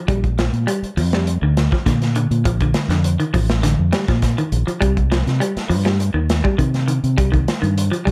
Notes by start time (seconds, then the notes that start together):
0.08 A#1 G3, kick, closed hi-hat
0.24 kick, closed hi-hat
0.38 F3, snare, closed hi-hat
0.53 A#2, closed hi-hat
0.67 G3, closed hi-hat
0.82 muted fingered electric bass stroke, closed hi-hat
0.97 F2 F3, open hi-hat
1.13 G3, snare, closed hi-hat
1.27 closed hi-hat
1.42 D2 D3
1.57 snare, closed hi-hat
1.72 F3, kick, snare
1.86 A#2 D3, kick, snare, closed hi-hat
2.02 snare, closed hi-hat
2.15 D3, closed hi-hat
2.31 A#2, closed hi-hat
2.45 A#1 F3, kick, closed hi-hat
2.60 D3, kick, closed hi-hat
2.74 snare, closed hi-hat
2.88 F2 D3, snare, closed hi-hat
3.04 closed hi-hat
3.20 D#3, closed hi-hat
3.34 A1 F3, kick, open hi-hat
3.49 snare, closed hi-hat
3.63 D3, snare, closed hi-hat
3.79 F2
3.92 G3, snare, closed hi-hat
4.08 A#2 F3, kick, snare, closed hi-hat
4.22 kick, snare, closed hi-hat
4.38 D#3, closed hi-hat
4.52 A#1, closed hi-hat
4.67 F3, muted fingered electric bass stroke, closed hi-hat
4.81 C2 G3, kick, closed hi-hat
4.97 kick, closed hi-hat
5.12 F3, snare, closed hi-hat
5.27 C3, snare, closed hi-hat
5.40 G3, closed hi-hat
5.56 muted fingered electric bass stroke, snare, closed hi-hat
5.70 G2 F3, open hi-hat
5.85 G3, snare, closed hi-hat
6.00 closed hi-hat
6.14 D#2 D#3
6.30 snare, closed hi-hat
6.44 G3, kick
6.58 C3 D#3, kick, closed hi-hat
6.74 snare, closed hi-hat
6.88 D#3, closed hi-hat
7.04 C3, closed hi-hat
7.18 C2 G3, kick, closed hi-hat
7.32 D#3, kick, closed hi-hat
7.48 snare, closed hi-hat
7.62 G2 D#3, closed hi-hat
7.78 closed hi-hat
7.92 F3, closed hi-hat
8.05 A#1 G3, kick, open hi-hat